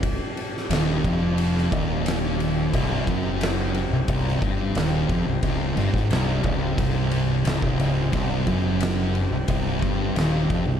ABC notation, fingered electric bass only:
X:1
M:4/4
L:1/16
Q:1/4=89
K:Cm
V:1 name="Fingered electric bass" clef=bass
C,,, z3 E,,,2 F,,,4 E,,,6 | C,,,2 ^F,,,4- F,,, C,,, C,,,2 G,,,2 E,,,2 =F,,, C,,, | _D,,,2 G,,, A,,, C,,,2 D,,,2 C,,,4 D,,, C,,, D,,,2 | C,,,2 ^F,,,4- F,,, C,,, C,,,2 G,,,2 E,,,2 =F,,, C,,, |]